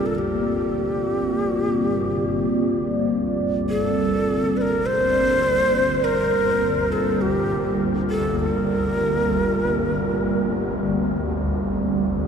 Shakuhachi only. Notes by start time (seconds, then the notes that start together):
0.06 A4
0.15 G4 A4
3.69 A4
4.57 C5
4.61 A#4
4.86 C5
6.04 A#4
6.92 A4
7.21 G4
8.10 A4
8.39 A4
8.51 A#4